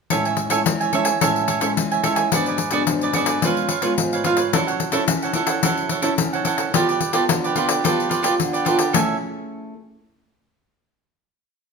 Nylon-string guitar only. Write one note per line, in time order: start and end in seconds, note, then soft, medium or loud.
0.11 0.64 A2 medium
0.11 0.48 G#3 soft
0.11 0.48 C#4 medium
0.11 0.48 E4 medium
0.51 0.89 G#3 medium
0.51 0.89 C#4 medium
0.51 0.89 E4 medium
0.67 1.19 E3 medium
0.93 1.10 G#3 medium
0.93 1.10 C#4 medium
0.93 1.10 E4 medium
1.22 1.74 A2 medium
1.22 1.59 G#3 medium
1.22 1.59 C#4 medium
1.22 1.59 E4 medium
1.61 1.99 G#3 medium
1.61 1.99 C#4 medium
1.61 2.00 E4 medium
1.77 2.29 E3 medium
2.03 2.27 G#3 medium
2.03 2.27 C#4 medium
2.03 2.28 E4 medium
2.33 2.85 G#2 medium
2.33 2.58 F#3 medium
2.33 2.59 B3 medium
2.33 2.59 D4 medium
2.72 3.10 F#3 medium
2.72 3.10 B3 medium
2.72 3.10 D4 medium
2.87 3.40 G#2 medium
3.14 3.38 F#3 medium
3.14 3.38 B3 medium
3.14 3.38 D4 medium
3.42 3.95 C#3 medium
3.42 3.69 G#3 medium
3.42 3.69 B3 medium
3.42 3.69 F4 medium
3.82 4.20 G#3 medium
3.82 4.20 B3 medium
3.82 4.21 F4 medium
3.98 4.50 G#2 medium
4.25 4.42 G#3 medium
4.25 4.42 B3 medium
4.25 4.42 F4 medium
4.53 5.06 F#3 medium
4.53 4.90 C#4 medium
4.53 4.90 E4 medium
4.53 4.90 A4 medium
4.92 5.30 C#4 medium
4.92 5.31 E4 medium
4.92 5.31 A4 medium
5.07 5.60 C#3 medium
5.34 5.58 C#4 medium
5.34 5.58 E4 medium
5.34 5.59 A4 medium
5.63 6.16 F#3 medium
5.63 6.00 C#4 medium
5.63 6.01 E4 medium
5.63 6.01 A4 medium
6.03 6.41 C#4 medium
6.03 6.41 E4 medium
6.03 6.41 A4 medium
6.19 6.71 C#3 medium
6.45 6.69 C#4 medium
6.45 6.69 E4 medium
6.45 6.69 A4 medium
6.74 7.26 G3 medium
6.74 7.00 B3 medium
6.74 7.00 F4 medium
6.74 7.00 A4 medium
7.13 7.51 B3 medium
7.13 7.51 F4 medium
7.13 7.51 A4 medium
7.29 7.81 D3 medium
7.55 7.79 B3 medium
7.55 7.79 F4 medium
7.55 7.80 A4 medium
7.84 8.36 G3 medium
7.84 8.21 B3 medium
7.84 8.21 F4 medium
7.84 8.21 A4 medium
8.24 8.61 B3 medium
8.24 8.62 F4 medium
8.24 8.62 A4 medium
8.40 8.92 D3 medium
8.67 8.83 B3 soft
8.67 8.83 F4 medium
8.67 8.83 A4 medium
8.94 9.73 A3 medium
8.94 9.73 C#4 medium
8.94 9.73 E4 medium
8.94 9.73 G#4 medium